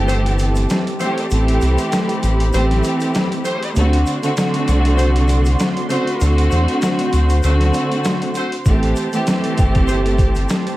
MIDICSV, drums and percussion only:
0, 0, Header, 1, 2, 480
1, 0, Start_track
1, 0, Tempo, 612245
1, 1026, Time_signature, 4, 2, 24, 8
1, 8443, End_track
2, 0, Start_track
2, 0, Title_t, "Drums"
2, 65, Note_on_c, 9, 82, 72
2, 73, Note_on_c, 9, 42, 85
2, 144, Note_off_c, 9, 82, 0
2, 152, Note_off_c, 9, 42, 0
2, 205, Note_on_c, 9, 42, 56
2, 284, Note_off_c, 9, 42, 0
2, 302, Note_on_c, 9, 82, 47
2, 310, Note_on_c, 9, 42, 76
2, 381, Note_off_c, 9, 82, 0
2, 389, Note_off_c, 9, 42, 0
2, 433, Note_on_c, 9, 82, 50
2, 446, Note_on_c, 9, 42, 49
2, 512, Note_off_c, 9, 82, 0
2, 524, Note_off_c, 9, 42, 0
2, 546, Note_on_c, 9, 82, 70
2, 548, Note_on_c, 9, 42, 89
2, 555, Note_on_c, 9, 38, 121
2, 624, Note_off_c, 9, 82, 0
2, 627, Note_off_c, 9, 42, 0
2, 634, Note_off_c, 9, 38, 0
2, 683, Note_on_c, 9, 42, 52
2, 761, Note_off_c, 9, 42, 0
2, 783, Note_on_c, 9, 82, 52
2, 788, Note_on_c, 9, 42, 75
2, 862, Note_off_c, 9, 82, 0
2, 867, Note_off_c, 9, 42, 0
2, 922, Note_on_c, 9, 42, 57
2, 1001, Note_off_c, 9, 42, 0
2, 1025, Note_on_c, 9, 82, 84
2, 1032, Note_on_c, 9, 42, 92
2, 1103, Note_off_c, 9, 82, 0
2, 1110, Note_off_c, 9, 42, 0
2, 1163, Note_on_c, 9, 42, 63
2, 1241, Note_off_c, 9, 42, 0
2, 1263, Note_on_c, 9, 82, 57
2, 1274, Note_on_c, 9, 42, 64
2, 1342, Note_off_c, 9, 82, 0
2, 1353, Note_off_c, 9, 42, 0
2, 1397, Note_on_c, 9, 82, 58
2, 1399, Note_on_c, 9, 42, 57
2, 1475, Note_off_c, 9, 82, 0
2, 1477, Note_off_c, 9, 42, 0
2, 1506, Note_on_c, 9, 82, 76
2, 1507, Note_on_c, 9, 42, 95
2, 1514, Note_on_c, 9, 38, 106
2, 1584, Note_off_c, 9, 82, 0
2, 1585, Note_off_c, 9, 42, 0
2, 1592, Note_off_c, 9, 38, 0
2, 1640, Note_on_c, 9, 42, 63
2, 1718, Note_off_c, 9, 42, 0
2, 1747, Note_on_c, 9, 42, 74
2, 1750, Note_on_c, 9, 82, 53
2, 1826, Note_off_c, 9, 42, 0
2, 1828, Note_off_c, 9, 82, 0
2, 1883, Note_on_c, 9, 42, 60
2, 1961, Note_off_c, 9, 42, 0
2, 1985, Note_on_c, 9, 82, 71
2, 1994, Note_on_c, 9, 42, 84
2, 2063, Note_off_c, 9, 82, 0
2, 2072, Note_off_c, 9, 42, 0
2, 2122, Note_on_c, 9, 38, 40
2, 2125, Note_on_c, 9, 42, 53
2, 2201, Note_off_c, 9, 38, 0
2, 2204, Note_off_c, 9, 42, 0
2, 2222, Note_on_c, 9, 82, 50
2, 2230, Note_on_c, 9, 42, 77
2, 2300, Note_off_c, 9, 82, 0
2, 2309, Note_off_c, 9, 42, 0
2, 2353, Note_on_c, 9, 82, 49
2, 2366, Note_on_c, 9, 42, 50
2, 2431, Note_off_c, 9, 82, 0
2, 2444, Note_off_c, 9, 42, 0
2, 2465, Note_on_c, 9, 82, 68
2, 2468, Note_on_c, 9, 42, 87
2, 2474, Note_on_c, 9, 38, 116
2, 2543, Note_off_c, 9, 82, 0
2, 2546, Note_off_c, 9, 42, 0
2, 2553, Note_off_c, 9, 38, 0
2, 2602, Note_on_c, 9, 42, 51
2, 2681, Note_off_c, 9, 42, 0
2, 2704, Note_on_c, 9, 82, 55
2, 2708, Note_on_c, 9, 42, 75
2, 2782, Note_off_c, 9, 82, 0
2, 2787, Note_off_c, 9, 42, 0
2, 2843, Note_on_c, 9, 42, 59
2, 2921, Note_off_c, 9, 42, 0
2, 2945, Note_on_c, 9, 82, 82
2, 2951, Note_on_c, 9, 42, 87
2, 3023, Note_off_c, 9, 82, 0
2, 3030, Note_off_c, 9, 42, 0
2, 3083, Note_on_c, 9, 42, 64
2, 3161, Note_off_c, 9, 42, 0
2, 3184, Note_on_c, 9, 82, 56
2, 3194, Note_on_c, 9, 42, 66
2, 3262, Note_off_c, 9, 82, 0
2, 3272, Note_off_c, 9, 42, 0
2, 3317, Note_on_c, 9, 82, 58
2, 3319, Note_on_c, 9, 42, 59
2, 3395, Note_off_c, 9, 82, 0
2, 3397, Note_off_c, 9, 42, 0
2, 3426, Note_on_c, 9, 42, 99
2, 3427, Note_on_c, 9, 82, 75
2, 3433, Note_on_c, 9, 38, 107
2, 3504, Note_off_c, 9, 42, 0
2, 3506, Note_off_c, 9, 82, 0
2, 3511, Note_off_c, 9, 38, 0
2, 3559, Note_on_c, 9, 42, 61
2, 3637, Note_off_c, 9, 42, 0
2, 3667, Note_on_c, 9, 42, 76
2, 3671, Note_on_c, 9, 82, 54
2, 3745, Note_off_c, 9, 42, 0
2, 3749, Note_off_c, 9, 82, 0
2, 3803, Note_on_c, 9, 42, 57
2, 3881, Note_off_c, 9, 42, 0
2, 3906, Note_on_c, 9, 82, 73
2, 3913, Note_on_c, 9, 42, 84
2, 3984, Note_off_c, 9, 82, 0
2, 3991, Note_off_c, 9, 42, 0
2, 4044, Note_on_c, 9, 42, 57
2, 4123, Note_off_c, 9, 42, 0
2, 4143, Note_on_c, 9, 82, 48
2, 4150, Note_on_c, 9, 42, 76
2, 4221, Note_off_c, 9, 82, 0
2, 4228, Note_off_c, 9, 42, 0
2, 4274, Note_on_c, 9, 82, 50
2, 4285, Note_on_c, 9, 42, 49
2, 4352, Note_off_c, 9, 82, 0
2, 4363, Note_off_c, 9, 42, 0
2, 4386, Note_on_c, 9, 82, 69
2, 4387, Note_on_c, 9, 42, 89
2, 4394, Note_on_c, 9, 38, 119
2, 4465, Note_off_c, 9, 82, 0
2, 4466, Note_off_c, 9, 42, 0
2, 4472, Note_off_c, 9, 38, 0
2, 4522, Note_on_c, 9, 42, 51
2, 4601, Note_off_c, 9, 42, 0
2, 4625, Note_on_c, 9, 82, 52
2, 4628, Note_on_c, 9, 42, 78
2, 4703, Note_off_c, 9, 82, 0
2, 4707, Note_off_c, 9, 42, 0
2, 4762, Note_on_c, 9, 42, 59
2, 4840, Note_off_c, 9, 42, 0
2, 4866, Note_on_c, 9, 82, 81
2, 4871, Note_on_c, 9, 42, 94
2, 4944, Note_off_c, 9, 82, 0
2, 4950, Note_off_c, 9, 42, 0
2, 5003, Note_on_c, 9, 42, 63
2, 5082, Note_off_c, 9, 42, 0
2, 5104, Note_on_c, 9, 82, 56
2, 5115, Note_on_c, 9, 42, 66
2, 5183, Note_off_c, 9, 82, 0
2, 5193, Note_off_c, 9, 42, 0
2, 5239, Note_on_c, 9, 42, 56
2, 5318, Note_off_c, 9, 42, 0
2, 5347, Note_on_c, 9, 82, 72
2, 5348, Note_on_c, 9, 42, 99
2, 5354, Note_on_c, 9, 38, 110
2, 5426, Note_off_c, 9, 42, 0
2, 5426, Note_off_c, 9, 82, 0
2, 5432, Note_off_c, 9, 38, 0
2, 5479, Note_on_c, 9, 42, 62
2, 5558, Note_off_c, 9, 42, 0
2, 5588, Note_on_c, 9, 42, 73
2, 5591, Note_on_c, 9, 82, 54
2, 5666, Note_off_c, 9, 42, 0
2, 5669, Note_off_c, 9, 82, 0
2, 5719, Note_on_c, 9, 82, 48
2, 5723, Note_on_c, 9, 42, 60
2, 5798, Note_off_c, 9, 82, 0
2, 5801, Note_off_c, 9, 42, 0
2, 5826, Note_on_c, 9, 82, 72
2, 5833, Note_on_c, 9, 42, 84
2, 5904, Note_off_c, 9, 82, 0
2, 5911, Note_off_c, 9, 42, 0
2, 5962, Note_on_c, 9, 38, 39
2, 5964, Note_on_c, 9, 42, 55
2, 6040, Note_off_c, 9, 38, 0
2, 6043, Note_off_c, 9, 42, 0
2, 6063, Note_on_c, 9, 82, 49
2, 6070, Note_on_c, 9, 42, 75
2, 6141, Note_off_c, 9, 82, 0
2, 6149, Note_off_c, 9, 42, 0
2, 6206, Note_on_c, 9, 42, 48
2, 6284, Note_off_c, 9, 42, 0
2, 6306, Note_on_c, 9, 82, 68
2, 6308, Note_on_c, 9, 42, 89
2, 6315, Note_on_c, 9, 38, 116
2, 6385, Note_off_c, 9, 82, 0
2, 6387, Note_off_c, 9, 42, 0
2, 6393, Note_off_c, 9, 38, 0
2, 6443, Note_on_c, 9, 42, 52
2, 6521, Note_off_c, 9, 42, 0
2, 6545, Note_on_c, 9, 82, 51
2, 6548, Note_on_c, 9, 42, 72
2, 6623, Note_off_c, 9, 82, 0
2, 6627, Note_off_c, 9, 42, 0
2, 6681, Note_on_c, 9, 42, 60
2, 6760, Note_off_c, 9, 42, 0
2, 6786, Note_on_c, 9, 82, 82
2, 6787, Note_on_c, 9, 36, 116
2, 6791, Note_on_c, 9, 42, 90
2, 6864, Note_off_c, 9, 82, 0
2, 6866, Note_off_c, 9, 36, 0
2, 6869, Note_off_c, 9, 42, 0
2, 6922, Note_on_c, 9, 42, 63
2, 7000, Note_off_c, 9, 42, 0
2, 7024, Note_on_c, 9, 82, 57
2, 7033, Note_on_c, 9, 42, 64
2, 7102, Note_off_c, 9, 82, 0
2, 7111, Note_off_c, 9, 42, 0
2, 7158, Note_on_c, 9, 42, 56
2, 7158, Note_on_c, 9, 82, 58
2, 7236, Note_off_c, 9, 42, 0
2, 7236, Note_off_c, 9, 82, 0
2, 7267, Note_on_c, 9, 42, 95
2, 7267, Note_on_c, 9, 82, 76
2, 7273, Note_on_c, 9, 38, 110
2, 7345, Note_off_c, 9, 42, 0
2, 7345, Note_off_c, 9, 82, 0
2, 7352, Note_off_c, 9, 38, 0
2, 7399, Note_on_c, 9, 42, 63
2, 7477, Note_off_c, 9, 42, 0
2, 7507, Note_on_c, 9, 42, 75
2, 7510, Note_on_c, 9, 82, 53
2, 7515, Note_on_c, 9, 36, 95
2, 7586, Note_off_c, 9, 42, 0
2, 7589, Note_off_c, 9, 82, 0
2, 7594, Note_off_c, 9, 36, 0
2, 7643, Note_on_c, 9, 42, 60
2, 7647, Note_on_c, 9, 36, 96
2, 7721, Note_off_c, 9, 42, 0
2, 7725, Note_off_c, 9, 36, 0
2, 7746, Note_on_c, 9, 82, 72
2, 7753, Note_on_c, 9, 42, 85
2, 7824, Note_off_c, 9, 82, 0
2, 7832, Note_off_c, 9, 42, 0
2, 7885, Note_on_c, 9, 42, 56
2, 7963, Note_off_c, 9, 42, 0
2, 7982, Note_on_c, 9, 82, 49
2, 7985, Note_on_c, 9, 36, 100
2, 7990, Note_on_c, 9, 42, 78
2, 8061, Note_off_c, 9, 82, 0
2, 8063, Note_off_c, 9, 36, 0
2, 8069, Note_off_c, 9, 42, 0
2, 8113, Note_on_c, 9, 82, 50
2, 8126, Note_on_c, 9, 42, 49
2, 8192, Note_off_c, 9, 82, 0
2, 8205, Note_off_c, 9, 42, 0
2, 8225, Note_on_c, 9, 82, 72
2, 8229, Note_on_c, 9, 42, 90
2, 8236, Note_on_c, 9, 38, 118
2, 8304, Note_off_c, 9, 82, 0
2, 8307, Note_off_c, 9, 42, 0
2, 8314, Note_off_c, 9, 38, 0
2, 8364, Note_on_c, 9, 42, 53
2, 8442, Note_off_c, 9, 42, 0
2, 8443, End_track
0, 0, End_of_file